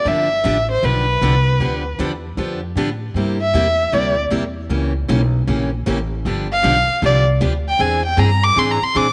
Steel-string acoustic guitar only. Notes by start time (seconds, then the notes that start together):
0.05 D3 F3 B3 D4 G4
0.44 D3 F3 B3 D4 G4
0.83 D3 F3 B3 D4 G4
1.22 D3 F3 B3 D4 G4
1.60 D3 F3 B3 D4 G4
1.99 D3 F3 B3 D4 G4
2.37 D3 F3 B3 D4 G4
2.77 D3 F3 B3 D4 G4
3.16 C3 G3 A#3 E4 G4
3.54 C3 G3 A#3 E4 G4
3.92 C3 G3 A#3 E4 G4
4.30 C3 G3 A#3 E4 G4
4.70 C#3 E3 A#3 C#4 G4
5.08 C#3 E3 A#3 C#4 G4
5.47 C#3 E3 A#3 C#4 G4
5.86 C#3 E3 A#3 C#4 G4
6.26 D3 F3 B3 D4 G4
6.63 D3 F3 B3 D4 G4
7.02 D3 F3 B3 D4 G4
7.41 D3 F3 B3 D4 G4
7.79 E3 C4 D4 G#4
8.17 E3 C4 D4 G#4
8.56 E3 C4 D4 G#4
8.94 E3 C4 D4 G#4